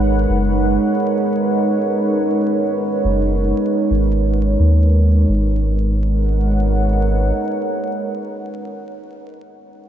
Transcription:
Already playing: G#1 G#3 D#4 A#4 B4 C#5 F#5
0.29 F#1
3.05 F#1
3.91 G#1
4.60 D#2
5.29 G#1 G#3
5.39 D#4
5.49 A#4
5.59 B4
5.69 C#5
5.80 F#5

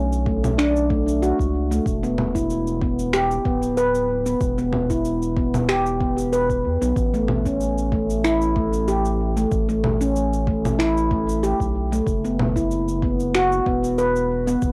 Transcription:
Already playing: B1 C#4
0.13 cabasa
0.26 A3, kick
0.44 low conga, cabasa
0.58 D4, finger snap, cabasa
0.76 cabasa
0.90 A3, kick
1.08 cabasa
1.22 F#4, cabasa
1.39 C#2, kick, cabasa
1.71 A3, cabasa
1.86 E1, kick, cabasa
2.03 B3, cabasa
2.18 low conga
2.35 E4, kick, cabasa
2.50 cabasa
2.67 cabasa
2.81 B3, kick
2.99 cabasa
3.13 G4, finger snap, cabasa
3.31 cabasa
3.45 D1 B3, kick
3.63 cabasa
3.77 B4, cabasa
3.95 cabasa
4.26 B3, cabasa
4.41 E1, kick, cabasa
4.58 B3, cabasa
4.73 low conga
4.90 E4, kick, cabasa
5.05 cabasa
5.22 cabasa
5.37 B3, kick
5.54 low conga, cabasa
5.69 G4, finger snap, cabasa
5.86 cabasa
6.00 B3, kick
6.18 cabasa
6.33 B4, cabasa
6.50 kick, cabasa
6.65 E2
6.82 B1 B3, cabasa
6.96 A1, kick, cabasa
7.14 A3, cabasa
7.28 low conga
7.46 C#4, kick, cabasa
7.61 cabasa
7.78 cabasa
7.92 A3, kick
8.10 cabasa
8.24 E4, finger snap, cabasa
8.41 cabasa
8.56 A3, kick
8.73 cabasa
8.88 G4, cabasa
9.05 cabasa
9.37 A3, cabasa
9.51 A1, kick, cabasa
9.69 A3, cabasa
9.84 low conga
10.01 C#4, cabasa
10.16 cabasa
10.33 cabasa
10.47 A3, kick
10.65 low conga, cabasa
10.79 E4, finger snap, cabasa
10.97 cabasa
11.11 A3, kick
11.29 cabasa
11.43 G4, cabasa
11.60 B1, kick, cabasa
11.92 A3, cabasa
12.07 F#1, kick, cabasa
12.25 B3, cabasa
12.39 low conga
12.56 E4, kick, cabasa
12.71 cabasa
12.88 cabasa
13.02 B3, kick
13.20 cabasa
13.35 F#4, finger snap, cabasa
13.52 cabasa
13.66 E1 B3, kick
13.84 cabasa
13.98 B4, cabasa
14.16 cabasa
14.47 B3, cabasa
14.62 F#1, kick, cabasa

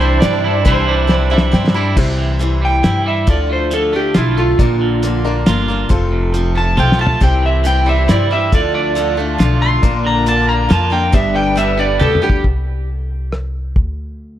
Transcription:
Already playing: C2 C3 E3 D4 E4 C5
0.00 G3 C4 D4 E4 G4 C5
0.20 G2 G3 C4 D4 D5, snare, closed hi-hat
0.25 G4
0.44 G3 D4 E4
0.65 C2 C3 E3 G3 C4 D4 E4 G4 C5, kick, closed hi-hat
0.87 C3 E3 G3 D4 E4
1.07 G3 C4 D4 G4, snare
1.30 G3 C4 D4 E4 G4 E5
1.38 snare
1.52 G2 G3 C4 D4 G4 G5, snare
1.68 snare
1.74 G3 C4 D4 E4 G4 B5
1.96 C2 C3 G3 C4 E4 G4 C5, kick, crash
2.18 E3
2.39 E3 G3 C4 E4 C5, closed hi-hat
2.62 G3 G5
2.83 G2 G3 C4 E4 C5, snare, closed hi-hat
3.06 G3 E5
3.27 D2 D3 F3 D4 F4 A4 D5, kick, closed hi-hat
3.49 A3 C5
3.71 D3 F3 D4 F4 A4, closed hi-hat
3.93 A3 D4 F4 G4 A4
4.14 B1 F3 D4 E4 F4, snare, closed hi-hat
4.19 A4
4.37 A3 D4 F4 A4
4.59 A#1 A#2 D3 F3 A#3 D4 F4 A#4 D5, kick, closed hi-hat
4.81 D3
5.03 D3 F3 A#3 D4 A#4, closed hi-hat
5.25 F3 A#3 D4 F4 A#4 D5
5.46 G1 F3 A#3 D4 F4 A#4, snare, closed hi-hat
5.68 F3 A#3 D4 A#4
5.89 F1 F2 F3 C4 F4 A4 C5, kick, closed hi-hat
6.12 C3
6.34 F3 C4 F4 A4, closed hi-hat
6.55 A3 C4 F4 A4 A5
6.77 B1 F3 C4 F4 A4 C5 G5, high tom
6.92 snare
6.99 A3 C4 F4 A4 A5
7.07 floor tom
7.20 C2 C3 G3 C4 E4 G4 C5 G5, kick, closed hi-hat
7.42 E3 E5
7.64 E3 G3 C4 E4 G4 G5, closed hi-hat
7.86 G3 C4 E4 G4 E5
8.08 G2 G3 C4 E4 G4 D5, snare, closed hi-hat
8.31 G3 C4 E4 G4 E5
8.52 D2 D3 F3 D4 F4 A4 D5, kick, closed hi-hat
8.74 A3 D5
8.95 D3 F3 D4 F4 A4, closed hi-hat
9.17 A3 D4 F4 A4
9.38 B1 F3 D4 F4 A4, snare, closed hi-hat
9.62 A3 C6
9.82 A#1 A#2 D3 F3 A#3 D4 F4 A#4 D5, kick, closed hi-hat
10.05 D3 A#5
10.26 D3 F3 A#3 D4 A#4 A5, closed hi-hat
10.49 A#3 A#5
10.69 F2 F3 A#3 D4 F4 A#4 A5, snare, closed hi-hat
10.90 F3 A#3 D4 A#4 G5
11.12 G1 G2 D3 G3 B3 D4 G4 B4 D5 E5, kick, closed hi-hat
11.34 D3 G5
11.56 G3 B3 D4 G4 E5, closed hi-hat
11.77 G3 B3 D4 G4 D5
11.99 D2 G3 B3 D4 G4 A4, high tom
12.15 mid tom
12.22 G3 B3 D4 G4
12.30 kick
12.44 C2, kick
13.32 cross-stick
13.76 D2, kick

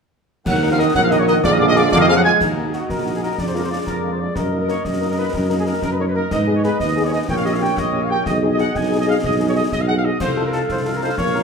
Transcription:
0.46 D#2 D#3 F#3 A#3 A#4 F#5 F#6, concert bass drum, snare, crash
0.62 A#3 D#4 A#4
0.71 F3 F5 F6
0.79 D#3 A#3 D#4 A#4 D#5 D#6
0.95 A#1 F#3 A#4 F#5 F#6, concert bass drum, snare
1.04 F3 F5 F6
1.11 D#3 A#3 D#4 A#4 D#5 D#6, snare
1.19 C#3 C#5 C#6
1.27 D#3 A#3 D#4 A#4 D#5 D#6, snare
1.43 A#1 D3 F3 G#3 G#4 D5 F5 D6, concert bass drum, snare
1.52 D#3 D#5 D#6
1.59 D3 A#3 F4 G#4 D5 D6
1.68 D#3 D#5 D#6
1.76 D3 A#3 F4 G#4 D5 D6, snare
1.92 F2 D3 G#4 D5 F5 D6, concert bass drum, snare
2.00 D#3 D#5 D#6
2.08 F3 A#3 F4 G#4 F5 F6
2.16 F#3 F#5 F#6
2.24 G#3 A#3 F4 G#4 G#5 G#6
2.40 D#2 F#4 A#4 D#5, concert bass drum, snare, crash
2.57 A#3 D#4 F#4
2.66 G#4
2.73 A#3 D#4 F#4, snare
2.90 A#1 A#4, concert bass drum, snare
3.06 A#3 D#4 F#4
3.15 G#4
3.22 A#3 D#4 F#4 A#4
3.38 F2 G#4 D5, concert bass drum, snare
3.47 C5
3.54 G#3 D4 F4 A#4
3.64 C5
3.71 G#3 D4 F4 D5
3.87 F2 A#4, concert bass drum, snare
4.04 G#3 D4 F4
4.12 C5
4.19 G#3 D4 F4 D5
4.36 F#2 A#4 D#5, concert bass drum, snare
4.53 A#3 D#4 A#4
4.61 A#4
4.69 A#3 D#4 A#4 C#5, snare
4.85 F#2 D#5, concert bass drum, snare
5.01 A#3 D#4 A#4
5.10 A#4
5.17 A#3 D#4 A#4 B4
5.34 F#2 A#4, concert bass drum, snare
5.50 A#3 D#4 A#4
5.58 G#4
5.66 A#3 D#4 A#4
5.82 F#2 A#4, concert bass drum, snare
5.92 B4
5.99 A#3 D#4 A#4 C#5
6.08 B4
6.15 A#3 D#4 A#4
6.31 G#2 B4 D#5, concert bass drum, snare, crash
6.47 B3 D#4 G#4
6.56 C#5
6.64 B3 D#4 G#4 B4, snare
6.80 D#2 D#5, concert bass drum, snare
6.96 B3 D#4 G#4
7.05 C#5
7.12 B3 D#4 G#4 D#5
7.28 A#1 A#4 C#5 G5, concert bass drum, snare
7.37 F5
7.44 A#3 C#4 G4 D#5
7.54 F5
7.61 A#3 C#4 G4 G5
7.77 A#1 D#5, concert bass drum, snare
7.93 A#3 C#4 G4
8.03 F5
8.10 A#3 C#4 G4 G5
8.26 B1 G#4 D#5, concert bass drum, snare
8.42 D#4 G#4
8.52 D#5
8.58 D#4 G#4 F#5, snare
8.75 B1 G#5, concert bass drum, snare
8.91 D#4 G#4
9.00 D#5
9.07 D#4 G#4 F5
9.23 B1 D#5, concert bass drum, snare
9.39 D#4 G#4
9.49 C#5
9.55 D#4 G#4 D#5
9.72 B1 D#5, concert bass drum, snare
9.81 F5
9.88 D#4 G#4 F#5
9.97 F5
10.04 D#4 G#4 D#5
10.20 C2 A4 C5 F5, concert bass drum, snare, crash
10.37 D#4 F4 A4
10.46 A#4
10.53 D#4 F4 A4, snare
10.69 C2 C5, concert bass drum, snare
10.86 D#4 F4 A4
10.95 A#4
11.03 D#4 F4 A4 C5
11.18 A#1 A#4 C#5, concert bass drum, snare
11.35 C#4 F4 A#4

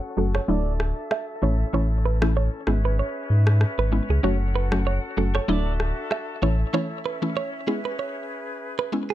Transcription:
Already playing: C#4 F#4 A4 F#5
0.17 F#1 F#3 A3 C#4 F#4 A4
0.35 C#5, cross-stick
0.48 D1 F#3 A3 D4 E4 D5 E5
0.80 cross-stick
1.11 E5, cross-stick
1.42 A1 E3 A3 C#4 E4 C#5
1.73 A1 E3 A3 C#4 E4 C#5
2.05 B4
2.22 E3 A3 C#4 E4, cross-stick
2.37 C#5
2.67 G#1 G#3 B3 C#4 E4 G#4 B4 E5, cross-stick
2.85 B4
2.99 C#5
3.30 G#2
3.47 cross-stick
3.61 cross-stick
3.78 G#1 B4
3.92 G#3 B3 C#4 E4
4.09 C#2 G#4
4.23 F#1 F#3 A3 C#4 F#4 A4 C#5 F#5
4.56 B4
4.72 F#3 A3 C#4 F#4, cross-stick
4.87 C#5
5.17 F#1 F#3 A3 C#4 F#4 A4
5.35 C#5, cross-stick
5.48 D1 F#3 A3 D4 E4 F#4 D5 E5
5.80 cross-stick
6.11 E5, cross-stick
6.42 A1 E3 A3 C#4 E4 C#5 E5
6.73 E3 A3 C#4 E4 C#5
7.06 B4
7.22 E3 A3 C#4 E4
7.37 C#5
7.67 G#3 B3 C#4 E4 G#4 B4
7.85 B4
7.99 C#5
8.79 B4
8.92 G#3 B3 C#4 E4
9.10 G#4

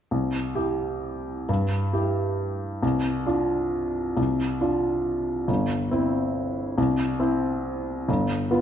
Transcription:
0.11 C2
0.55 E4 G4
1.49 G2
1.93 E4 G4
2.83 C2
3.26 D4 F4
4.17 C2
4.61 D4 F4
5.48 G1
5.91 C4 E4
6.78 C2
7.20 C4 E4
8.09 G1
8.51 B3 F4

